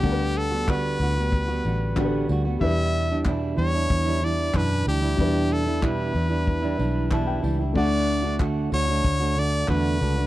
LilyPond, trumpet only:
\new Staff \with { instrumentName = "Trumpet" } { \time 4/4 \key e \dorian \tempo 4 = 93 g'8 a'8 b'2~ b'8 r8 | e''4 r8 cis''4 d''8 b'8 g'8~ | g'8 a'8 b'2~ b'8 r8 | d''4 r8 cis''4 d''8 b'4 | }